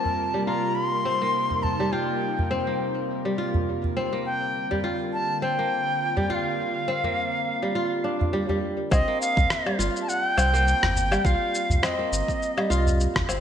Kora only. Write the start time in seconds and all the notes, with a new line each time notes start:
Already playing: A#3 C4
0.34 G3
0.47 F4
1.05 C4
1.22 A#3
1.80 G3
1.93 F4
2.51 C4
2.67 A#3
3.25 G3
3.38 F4
3.97 C4
4.13 A#3
4.71 G3
4.84 F4
5.42 C4
5.59 A#3
6.17 G3
6.30 F4
6.88 C4
7.04 A#3
7.62 G3
7.75 F4
8.04 D4
8.33 G3
8.49 G3
8.91 C4
9.08 A#3
9.66 G3
9.79 F4
10.37 C4
10.54 A#3
11.11 G3
11.25 F4
11.83 C4
11.99 A#3
12.57 G3
12.70 F4
13.29 C4